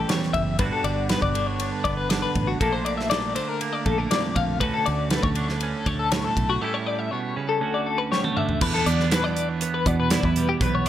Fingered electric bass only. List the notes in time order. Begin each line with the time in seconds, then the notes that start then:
0.34 F#1
0.60 G1
0.84 G1
1.22 G1
1.85 G1
2.36 A1
2.61 A#1
3.86 A#1
4.36 A#1
4.61 D2
4.88 D2
5.24 D2
5.86 D2
6.37 B1
8.62 E2
8.86 E2
9.86 E2
10.24 E2
10.61 B1